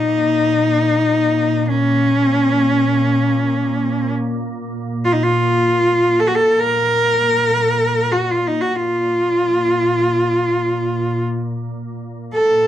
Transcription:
Already playing: A#2 D#4
1.69 C#4
5.05 F4
5.12 D#4
5.23 F4
6.20 A4
6.27 F#4
6.36 A4
6.60 A#4
8.12 F#4
8.31 F4
8.47 D#4
8.61 F#4
8.76 F4
11.57 A#2
12.34 A4

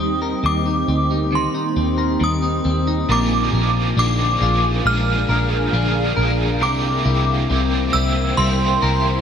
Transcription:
Already playing: D#2 G3 A#3 C4 D#4 G4 C5 D#6
0.00 C4
0.22 A#4
0.44 D#2 G3 D6
0.66 D#4
0.88 D2 C4
1.11 D#4
1.32 D#3 C6
1.54 D#4
1.76 D#2 C4
1.98 A#4
2.20 D#2 G3 D#6
2.43 D#4
2.65 D#2 C4
2.87 D#4
3.09 A#1 A#2 D3 F3 A#3 D4 G#4 A#4 F5 D6
3.52 A#1 F3 A#3 D4 F4 G#4
3.97 A#1 A#2 D3 F3 A#3 D4 G#4 D6
4.41 A#1 F3 A#3 D4 F4 G#4
4.85 A#1 F3 G#3 A#3 D4 G#4 F6
5.29 A#1 F3 A#3 D4 G#4 A#4
5.73 A#1 A#2 D3 F3 A#3 D4 G#4
6.17 A#1 F3 A#3 D4 G#4 A#4
6.61 C2 C3 G3 A#3 E4 G4 A#4 C5 G5 D6
7.05 C2 E4 G4
7.09 A#3
7.50 C2 C3 G3 A#3 C4 E4 G4
7.93 C2 A#3 E4 G4 E6
8.37 C2 G3 A#3 E4 C6
8.41 G4
8.82 C2 A#3 E4 G4 A#4

